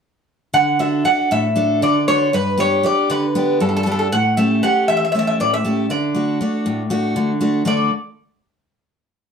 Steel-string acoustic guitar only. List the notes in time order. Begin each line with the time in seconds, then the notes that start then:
0.53 D3
0.79 D4 F#4 A4
1.05 D4 F#4 A4
1.31 A2
1.56 D4 F#4 A4
1.82 D3
2.08 D4 F#4 A4
2.33 G2
2.58 B3 D4 G4
2.83 B3 D4 G4
3.10 D3
3.35 B3 D4 G4
3.60 G2
3.86 B3 D4 G4
4.13 A2
4.38 A3 C#4 G4
4.63 A3 C#4 G4
4.89 E2
5.15 A3 C#4 G4
5.40 A2
5.65 A3 C#4 G4
5.90 D3
6.15 A3 D4 F#4
6.41 A3 D4 F#4
6.66 A2
6.90 A3 D4 F#4
7.16 D3
7.41 A3 D4 F#4
7.65 D3 A3 D4 F#4 A4